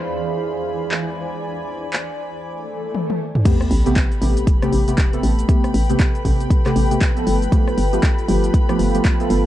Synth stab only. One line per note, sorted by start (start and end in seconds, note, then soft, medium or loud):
3.45 3.72 C3 medium
3.45 3.72 A3 medium
3.45 3.72 B3 medium
3.45 3.72 G4 medium
3.86 4.01 C3 medium
3.86 4.01 A3 medium
3.86 4.01 B3 medium
3.86 4.01 G4 loud
4.22 4.59 C3 medium
4.22 4.59 A3 medium
4.22 4.59 B3 medium
4.22 4.59 G4 medium
4.62 4.77 C3 loud
4.62 4.77 A3 medium
4.62 4.77 B3 medium
4.62 4.77 G4 loud
4.88 5.09 C3 medium
4.88 5.09 A3 medium
4.88 5.09 B3 medium
4.88 5.09 G4 medium
5.13 5.46 C3 medium
5.13 5.46 A3 medium
5.13 5.46 B3 medium
5.13 5.46 A4 medium
5.49 5.76 C3 medium
5.49 5.76 A3 medium
5.49 5.76 B3 medium
5.49 5.76 G4 medium
5.89 6.04 C3 medium
5.89 6.04 A3 medium
5.89 6.04 B3 medium
5.89 6.04 G4 loud
6.25 6.62 C3 medium
6.25 6.62 A3 medium
6.25 6.62 B3 medium
6.25 6.62 G4 medium
6.66 6.81 C3 loud
6.66 6.81 A3 medium
6.66 6.81 B3 medium
6.66 6.81 G4 loud
6.91 7.12 C3 medium
6.91 7.12 A3 medium
6.91 7.12 B3 medium
6.91 7.12 G4 medium
7.17 7.50 F3 medium
7.17 7.50 A3 medium
7.17 7.50 B3 medium
7.17 7.50 A4 medium
7.52 7.79 F3 medium
7.52 7.79 A3 medium
7.52 7.79 B3 medium
7.52 7.79 G4 medium
7.93 8.08 F3 medium
7.93 8.08 A3 medium
7.93 8.08 B3 medium
7.93 8.08 G4 loud
8.28 8.65 F3 medium
8.28 8.65 A3 medium
8.28 8.65 B3 medium
8.28 8.66 G4 medium
8.69 8.84 F3 loud
8.69 8.84 A3 medium
8.69 8.84 B3 medium
8.69 8.84 G4 loud
8.95 9.15 F3 medium
8.95 9.15 A3 medium
8.95 9.15 B3 medium
8.95 9.15 G4 medium
9.20 9.46 F3 medium
9.20 9.46 A3 medium
9.20 9.46 B3 medium
9.20 9.46 A4 medium